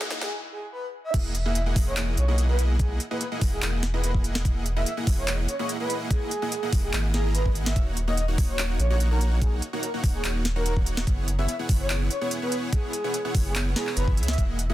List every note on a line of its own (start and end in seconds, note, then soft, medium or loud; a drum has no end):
0.00 0.27 E3 medium
0.00 0.27 A#3 medium
0.00 0.29 A#3 medium
0.00 0.10 D#4 loud
0.00 0.29 E4 medium
0.00 0.27 F#4 medium
0.00 2.44 F#4 medium
0.00 0.29 G#4 medium
0.00 0.27 D#5 medium
0.00 0.29 D#5 medium
0.00 0.29 F#5 loud
0.00 snare medium
0.00 riser medium
0.10 0.27 D#4 loud
0.10 snare loud
0.10 closed hi-hat medium
0.21 2.83 E4 loud
0.21 0.34 G#4 medium
0.21 snare medium
0.52 0.65 G#4 medium
0.73 0.86 B4 medium
1.04 1.14 E5 medium
1.14 1.75 E1 loud
1.14 1.34 A#3 medium
1.14 1.34 E4 medium
1.14 1.34 G#4 medium
1.14 1.34 D#5 medium
1.14 1.34 F#5 medium
1.14 kick loud
1.14 closed hi-hat medium
1.14 crash loud
1.35 closed hi-hat medium
1.45 1.57 A#3 medium
1.45 1.57 E4 medium
1.45 1.57 G#4 medium
1.45 1.57 D#5 medium
1.45 1.52 E5 medium
1.45 1.57 F#5 medium
1.55 1.62 E5 medium
1.55 closed hi-hat medium
1.66 1.94 A#3 medium
1.66 1.94 E4 medium
1.66 1.94 G#4 medium
1.66 1.94 D#5 medium
1.66 1.94 F#5 loud
1.76 2.16 E1 medium
1.76 kick loud
1.76 open hi-hat medium
1.87 2.00 C#5 medium
1.97 2.16 A#3 medium
1.97 2.16 E4 medium
1.97 2.16 G#4 medium
1.97 2.16 D#5 medium
1.97 2.16 F#5 loud
1.97 clap loud
1.97 closed hi-hat medium
2.17 2.99 B1 loud
2.17 2.24 C#5 medium
2.17 closed hi-hat medium
2.28 2.46 A#3 medium
2.28 2.46 E4 medium
2.28 2.46 G#4 medium
2.28 2.35 C#5 medium
2.28 2.46 D#5 medium
2.28 2.46 F#5 loud
2.38 closed hi-hat medium
2.49 2.77 A#3 medium
2.49 2.77 E4 medium
2.49 2.77 G#4 medium
2.49 2.62 B4 medium
2.49 2.77 D#5 medium
2.49 2.77 F#5 medium
2.59 closed hi-hat medium
2.79 2.93 G#4 medium
2.79 kick loud
2.79 closed hi-hat medium
3.00 closed hi-hat medium
3.11 3.23 A#3 medium
3.11 3.23 E4 medium
3.11 3.23 G#4 medium
3.11 3.17 B4 medium
3.11 3.23 D#5 medium
3.11 3.23 F#5 medium
3.21 3.28 B4 medium
3.21 closed hi-hat medium
3.32 3.60 A#3 medium
3.32 3.60 E4 medium
3.32 3.60 G#4 medium
3.32 3.60 D#5 medium
3.32 3.60 F#5 loud
3.41 3.61 E1 medium
3.41 kick loud
3.41 open hi-hat medium
3.52 3.65 G#4 medium
3.62 4.85 E1 medium
3.62 3.82 A#3 medium
3.62 3.82 E4 medium
3.62 3.82 G#4 medium
3.62 3.82 D#5 medium
3.62 3.82 F#5 loud
3.62 clap loud
3.62 closed hi-hat medium
3.83 snare medium
3.83 closed hi-hat medium
3.94 4.12 A#3 medium
3.94 4.12 E4 medium
3.94 4.12 G#4 medium
3.94 4.00 B4 medium
3.94 4.12 D#5 medium
3.94 4.12 F#5 loud
4.04 4.11 B4 medium
4.04 closed hi-hat medium
4.14 4.43 A#3 medium
4.14 4.43 E4 medium
4.14 4.43 G#4 medium
4.14 4.43 D#5 medium
4.14 kick medium
4.24 closed hi-hat medium
4.35 snare medium
4.45 4.65 A#3 medium
4.45 4.65 E4 medium
4.45 4.65 D#5 medium
4.45 kick loud
4.45 closed hi-hat medium
4.66 closed hi-hat medium
4.76 4.88 A#3 medium
4.76 4.88 E4 medium
4.76 4.88 G#4 medium
4.76 4.88 D#5 medium
4.76 4.83 E5 medium
4.76 4.88 F#5 loud
4.86 4.93 E5 medium
4.86 closed hi-hat medium
4.97 5.25 A#3 medium
4.97 5.25 E4 medium
4.97 5.25 G#4 medium
4.97 5.25 D#5 medium
4.97 5.25 F#5 loud
5.07 5.47 E1 medium
5.07 kick loud
5.07 open hi-hat medium
5.18 5.31 C#5 medium
5.28 5.47 A#3 medium
5.28 5.47 E4 medium
5.28 5.47 G#4 medium
5.28 5.47 D#5 medium
5.28 5.47 F#5 loud
5.28 clap loud
5.28 closed hi-hat medium
5.48 5.55 C#5 medium
5.48 closed hi-hat medium
5.59 5.77 A#3 medium
5.59 5.77 E4 medium
5.59 5.77 G#4 medium
5.59 5.66 C#5 medium
5.59 5.77 D#5 medium
5.59 5.77 F#5 loud
5.69 closed hi-hat medium
5.80 6.08 A#3 medium
5.80 6.08 E4 medium
5.80 6.08 G#4 medium
5.80 5.93 B4 medium
5.80 6.08 D#5 medium
5.80 6.08 F#5 medium
5.90 closed hi-hat medium
6.10 6.30 A#3 medium
6.10 6.69 G#4 loud
6.10 6.30 F#5 medium
6.10 kick loud
6.10 closed hi-hat medium
6.31 closed hi-hat medium
6.42 6.54 A#3 medium
6.42 6.54 E4 medium
6.42 6.54 G#4 medium
6.42 6.54 D#5 medium
6.42 6.54 F#5 loud
6.52 closed hi-hat medium
6.63 6.91 A#3 medium
6.63 6.91 E4 medium
6.63 6.91 G#4 medium
6.63 6.91 D#5 medium
6.63 6.91 F#5 loud
6.73 6.93 E1 medium
6.73 kick loud
6.73 open hi-hat medium
6.83 6.96 G#4 medium
6.93 7.75 G#1 medium
6.93 7.12 A#3 medium
6.93 7.12 E4 medium
6.93 7.12 G#4 medium
6.93 7.12 D#5 medium
6.93 7.12 F#5 loud
6.93 clap loud
6.93 closed hi-hat medium
7.14 7.43 A#3 medium
7.14 7.43 E4 medium
7.14 7.43 G#4 medium
7.14 7.28 G#4 medium
7.14 7.43 D#5 medium
7.14 7.43 A#5 medium
7.14 snare medium
7.14 closed hi-hat medium
7.35 7.48 B4 medium
7.35 closed hi-hat medium
7.46 7.74 A#3 loud
7.46 7.74 E4 medium
7.46 7.74 G#4 medium
7.46 7.74 D#5 medium
7.46 7.74 F#5 loud
7.46 kick medium
7.55 closed hi-hat medium
7.66 7.80 E5 medium
7.66 snare medium
7.76 8.37 D#1 loud
7.76 7.96 A#3 medium
7.76 7.96 D#4 medium
7.76 7.96 F#4 medium
7.76 7.96 C#5 medium
7.76 7.96 F#5 medium
7.76 kick loud
7.76 closed hi-hat medium
7.97 closed hi-hat medium
8.08 8.19 A#3 medium
8.08 8.19 D#4 medium
8.08 8.19 F#4 medium
8.08 8.19 C#5 medium
8.08 8.14 D#5 medium
8.08 8.19 F#5 loud
8.17 8.24 D#5 medium
8.17 closed hi-hat medium
8.28 8.56 A#3 medium
8.28 8.56 D#4 medium
8.28 8.56 F#4 medium
8.28 8.56 C#5 medium
8.28 8.56 F#5 loud
8.38 8.78 D#1 medium
8.38 kick loud
8.38 open hi-hat loud
8.49 8.62 C#5 medium
8.59 8.79 A#3 medium
8.59 8.79 D#4 medium
8.59 8.79 F#4 medium
8.59 8.79 C#5 medium
8.59 8.79 F#5 medium
8.59 clap loud
8.59 closed hi-hat medium
8.79 9.61 A#1 loud
8.79 8.86 C#5 medium
8.79 closed hi-hat medium
8.90 9.08 A#3 medium
8.90 9.08 D#4 medium
8.90 9.08 F#4 medium
8.90 8.97 C#5 medium
8.90 9.08 C#5 medium
8.90 9.08 F#5 loud
9.00 closed hi-hat medium
9.11 9.39 A#3 medium
9.11 9.39 D#4 medium
9.11 9.39 F#4 medium
9.11 9.24 A#4 medium
9.11 9.39 C#5 medium
9.11 9.39 F#5 medium
9.21 closed hi-hat medium
9.41 9.61 A#3 medium
9.41 9.61 F#4 medium
9.41 9.55 G#4 medium
9.41 9.61 C#5 medium
9.41 kick loud
9.41 closed hi-hat medium
9.62 closed hi-hat medium
9.73 9.85 A#3 medium
9.73 9.85 D#4 medium
9.73 9.85 F#4 medium
9.73 9.79 A#4 medium
9.73 9.85 C#5 medium
9.73 9.85 F#5 medium
9.83 9.90 A#4 medium
9.83 closed hi-hat medium
9.94 10.22 A#3 medium
9.94 10.22 D#4 medium
9.94 10.22 F#4 medium
9.94 10.22 C#5 medium
9.94 10.22 F#5 loud
10.04 10.23 D#1 medium
10.04 kick loud
10.04 open hi-hat loud
10.15 10.27 G#4 medium
10.24 11.06 D#1 medium
10.24 10.44 A#3 medium
10.24 10.44 D#4 medium
10.24 10.44 F#4 medium
10.24 10.44 C#5 medium
10.24 10.44 F#5 medium
10.24 clap loud
10.24 closed hi-hat medium
10.45 snare medium
10.45 closed hi-hat medium
10.56 10.74 A#3 medium
10.56 10.74 D#4 medium
10.56 10.74 F#4 medium
10.56 10.62 A#4 medium
10.56 10.74 C#5 medium
10.56 10.74 F#5 loud
10.66 10.73 A#4 medium
10.66 closed hi-hat medium
10.77 11.05 A#3 medium
10.77 kick medium
10.86 closed hi-hat medium
10.97 snare medium
11.07 11.47 F#1 loud
11.07 11.27 B3 medium
11.07 11.27 E4 medium
11.07 11.27 G#4 medium
11.07 11.27 F#5 medium
11.07 kick loud
11.07 closed hi-hat medium
11.28 closed hi-hat medium
11.39 11.50 B3 medium
11.39 11.50 E4 medium
11.39 11.50 G#4 medium
11.39 11.50 C#5 medium
11.39 11.45 E5 medium
11.39 11.50 F#5 loud
11.48 11.55 E5 medium
11.48 closed hi-hat medium
11.59 11.87 B3 medium
11.59 11.87 E4 medium
11.59 11.87 G#4 medium
11.59 11.87 C#5 medium
11.59 11.87 F#5 medium
11.69 12.09 F#1 medium
11.69 kick loud
11.69 open hi-hat loud
11.80 11.93 C#5 medium
11.90 12.10 B3 medium
11.90 12.10 E4 medium
11.90 12.09 G#4 medium
11.90 12.10 C#5 medium
11.90 12.09 F#5 loud
11.90 clap loud
11.90 closed hi-hat medium
12.10 12.17 C#5 medium
12.10 closed hi-hat medium
12.21 12.39 B3 medium
12.21 12.39 E4 medium
12.21 12.39 G#4 medium
12.21 12.28 C#5 medium
12.21 12.39 C#5 medium
12.21 12.39 F#5 loud
12.31 closed hi-hat medium
12.42 12.70 B3 medium
12.42 12.70 E4 medium
12.42 12.70 G#4 medium
12.42 12.55 B4 medium
12.42 12.70 C#5 medium
12.42 12.70 F#5 medium
12.52 closed hi-hat medium
12.73 12.92 B3 medium
12.73 12.92 E4 medium
12.73 13.31 G#4 medium
12.73 12.92 F#5 medium
12.73 kick loud
12.73 closed hi-hat medium
12.93 closed hi-hat medium
13.04 13.16 B3 medium
13.04 13.16 E4 medium
13.04 13.16 G#4 medium
13.04 13.16 C#5 medium
13.04 13.16 F#5 medium
13.14 closed hi-hat medium
13.25 13.53 B3 medium
13.25 13.53 E4 medium
13.25 13.53 G#4 medium
13.25 13.53 C#5 medium
13.25 13.53 F#5 medium
13.35 13.75 F#1 medium
13.35 kick loud
13.35 open hi-hat loud
13.46 13.58 G#4 medium
13.55 13.74 B3 medium
13.55 13.74 E4 medium
13.55 13.74 G#4 medium
13.55 13.74 C#5 medium
13.55 13.74 F#5 loud
13.55 clap loud
13.55 closed hi-hat medium
13.76 14.05 B3 medium
13.76 14.05 E4 medium
13.76 13.90 G#4 medium
13.76 14.05 G#4 medium
13.76 14.05 C#5 medium
13.76 14.05 A#5 medium
13.76 snare medium
13.76 closed hi-hat medium
13.87 clap soft
13.97 14.19 F#1 medium
13.97 14.10 B4 medium
13.97 closed hi-hat medium
14.08 14.36 B3 loud
14.08 14.36 E4 medium
14.08 14.36 G#4 medium
14.08 14.36 E5 loud
14.08 kick medium
14.17 14.37 C#2 medium
14.17 closed hi-hat medium
14.23 closed hi-hat medium
14.28 14.42 E5 loud
14.28 snare medium
14.28 closed hi-hat medium
14.33 closed hi-hat medium
14.38 14.74 E1 loud
14.38 14.58 A#3 medium
14.38 14.58 E4 medium
14.38 14.58 G#4 medium
14.38 14.58 D#5 medium
14.38 14.58 F#5 medium
14.38 kick loud
14.38 closed hi-hat medium
14.59 closed hi-hat medium
14.70 14.74 A#3 medium
14.70 14.74 E4 medium
14.70 14.74 G#4 medium
14.70 14.74 D#5 medium
14.70 14.74 E5 medium
14.70 14.74 F#5 loud